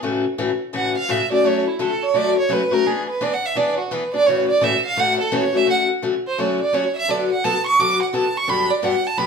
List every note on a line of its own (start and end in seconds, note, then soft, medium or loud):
0.03 0.24 A2 medium
0.03 0.24 C#3 medium
0.03 0.24 E3 medium
0.03 0.24 A3 medium
0.03 0.24 C#4 medium
0.03 0.24 F#4 medium
0.38 0.49 A2 medium
0.38 0.49 C#3 medium
0.38 0.50 E3 medium
0.38 0.50 A3 medium
0.38 0.50 C#4 medium
0.38 0.50 F#4 medium
0.73 0.94 A2 medium
0.73 0.95 C#3 medium
0.73 0.95 E3 medium
0.73 0.94 A3 medium
0.73 0.95 C#4 medium
0.73 0.95 F#4 medium
0.73 0.95 F#5 medium
0.98 1.12 F5 medium
1.08 1.20 A2 medium
1.08 1.20 C#3 medium
1.08 1.20 E3 medium
1.08 1.20 A3 medium
1.08 1.20 C#4 medium
1.08 1.20 F#4 medium
1.08 1.32 E5 medium
1.30 1.44 E3 soft
1.30 1.43 A3 soft
1.30 1.44 C#4 soft
1.30 1.43 F#4 medium
1.30 1.48 D5 medium
1.44 1.65 D3 medium
1.44 1.66 F#3 medium
1.44 1.65 A3 medium
1.44 1.66 C#4 medium
1.44 1.66 F#4 medium
1.44 1.67 C#5 medium
1.69 1.83 E4 soft
1.79 1.91 D3 medium
1.79 1.91 F#3 medium
1.79 1.91 A3 medium
1.79 1.91 C#4 medium
1.79 1.91 F#4 medium
1.79 2.05 A4 medium
2.03 2.17 C#5 medium
2.14 2.35 D3 medium
2.14 2.35 F#3 medium
2.14 2.36 A3 medium
2.14 2.36 C#4 medium
2.14 2.36 F#4 medium
2.14 2.37 D5 loud
2.40 2.54 C#5 medium
2.49 2.60 D3 medium
2.49 2.61 F#3 medium
2.49 2.61 A3 medium
2.49 2.61 C#4 medium
2.49 2.61 F#4 medium
2.49 2.75 B4 medium
2.71 2.85 A3 soft
2.71 2.85 C#4 medium
2.71 2.84 F#4 medium
2.71 2.89 A#4 medium
2.86 3.07 E3 medium
2.86 3.07 B3 medium
2.86 3.07 D4 medium
2.86 3.07 G#4 medium
2.86 3.08 G#4 medium
3.10 3.24 B4 medium
3.21 3.32 E3 medium
3.21 3.32 B3 medium
3.21 3.32 D4 medium
3.21 3.32 G#4 medium
3.21 3.36 D5 medium
3.34 3.47 F#5 medium
3.46 3.59 E5 medium
3.55 3.77 E3 medium
3.55 3.77 B3 medium
3.55 3.77 D4 medium
3.55 3.77 G#4 medium
3.55 3.78 D5 medium
3.79 3.94 F#4 soft
3.91 4.02 E3 medium
3.91 4.02 B3 loud
3.91 4.03 D4 medium
3.91 4.03 G#4 medium
3.91 4.14 B4 medium
4.14 4.27 B3 soft
4.14 4.26 D4 medium
4.14 4.26 G#4 medium
4.14 4.28 D5 loud
4.27 4.48 A2 medium
4.27 4.48 C#3 medium
4.27 4.48 E3 medium
4.27 4.48 A3 medium
4.27 4.48 C#4 medium
4.27 4.48 F#4 medium
4.27 4.48 C#5 medium
4.49 4.65 D5 medium
4.61 4.72 A2 medium
4.61 4.72 C#3 medium
4.61 4.72 E3 medium
4.61 4.72 A3 medium
4.61 4.72 C#4 medium
4.61 4.73 F#4 medium
4.61 4.84 E5 medium
4.86 5.01 F5 loud
4.96 5.17 A2 medium
4.96 5.17 C#3 medium
4.96 5.18 E3 medium
4.96 5.18 A3 medium
4.96 5.18 C#4 medium
4.96 5.18 F#4 medium
4.96 5.20 F#5 medium
5.20 5.37 A4 medium
5.32 5.43 A2 medium
5.32 5.43 C#3 medium
5.32 5.43 E3 medium
5.32 5.43 A3 medium
5.32 5.43 C#4 medium
5.32 5.43 F#4 medium
5.32 5.58 C#5 medium
5.53 5.65 E3 medium
5.53 5.65 A3 medium
5.53 5.66 C#4 medium
5.53 5.66 F#4 medium
5.53 5.68 E5 medium
5.66 5.87 D3 medium
5.66 5.87 F#3 medium
5.66 5.88 A3 medium
5.66 5.88 C#4 medium
5.66 5.88 F#4 medium
5.70 5.82 F#5 medium
6.02 6.13 D3 medium
6.02 6.14 F#3 medium
6.02 6.14 A3 medium
6.02 6.14 C#4 medium
6.02 6.14 F#4 medium
6.27 6.41 C5 medium
6.38 6.59 D3 medium
6.38 6.59 F#3 medium
6.38 6.59 A3 medium
6.38 6.59 C#4 medium
6.38 6.59 F#4 medium
6.38 6.60 C#5 medium
6.61 6.76 D5 medium
6.73 6.84 D3 medium
6.73 6.84 F#3 medium
6.73 6.84 A3 medium
6.73 6.84 C#4 medium
6.73 6.84 F#4 medium
6.73 6.95 C#5 medium
6.96 7.12 E5 loud
7.08 7.29 D3 medium
7.08 7.29 F#3 medium
7.08 7.29 B3 medium
7.08 7.29 F#4 medium
7.08 7.29 A4 medium
7.08 7.31 D5 medium
7.33 7.46 F#5 medium
7.44 7.55 D3 medium
7.44 7.55 F#3 medium
7.44 7.55 B3 medium
7.44 7.55 F#4 medium
7.44 7.55 A4 medium
7.44 7.65 A5 loud
7.67 7.81 C#6 loud
7.79 7.99 D3 medium
7.79 8.00 F#3 medium
7.79 8.00 B3 medium
7.79 8.00 F#4 medium
7.79 8.00 A4 medium
7.79 8.01 D6 loud
8.03 8.16 F#5 medium
8.13 8.24 D3 medium
8.13 8.24 F#3 medium
8.13 8.25 B3 medium
8.13 8.24 F#4 medium
8.13 8.24 A4 medium
8.13 8.39 A5 medium
8.37 8.51 C#6 loud
8.47 8.69 G2 medium
8.47 8.69 D3 medium
8.47 8.69 F#3 medium
8.47 8.69 B3 medium
8.47 8.69 D4 medium
8.47 8.69 G4 medium
8.47 8.72 B5 medium
8.70 8.86 D5 medium
8.82 8.94 G2 medium
8.82 8.94 D3 medium
8.82 8.94 F#3 medium
8.82 8.94 B3 medium
8.82 8.94 D4 medium
8.82 8.95 G4 medium
8.82 9.08 F#5 medium
9.07 9.19 A5 medium
9.18 9.27 G2 medium
9.18 9.27 D3 medium
9.18 9.27 F#3 medium
9.18 9.27 B3 medium
9.18 9.27 D4 medium
9.18 9.27 G4 medium
9.18 9.27 B5 medium